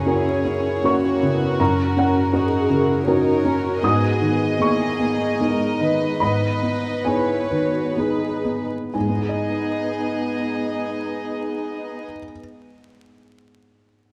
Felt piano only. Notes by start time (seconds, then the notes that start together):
Already playing: F#2 C#3 F#5 G#5
0.06 C#4 F#4 A#4
0.45 C#4
0.84 C#4 F#4 A#4 C#6
1.23 C#3
1.60 F#2 A#5
1.97 C#4 F#5
2.33 C#4 F#4 A#4
2.70 C#3
3.07 C#4 F#4 A#4
3.45 C#4
3.83 G#2 D#6
4.21 D#3
4.59 B3 D#4 G#4 C#6
4.99 B3
5.40 B3 D#4 G#4
5.81 D#3
6.20 G#2 B5
6.63 B3
7.05 B3 D#4 G#4 G#5
7.51 D#3
7.97 B3 D#4 G#4
8.45 B3
8.94 G#2 G#5
9.01 G#3
9.08 B3
9.15 D#4
9.22 G#4
9.29 D#5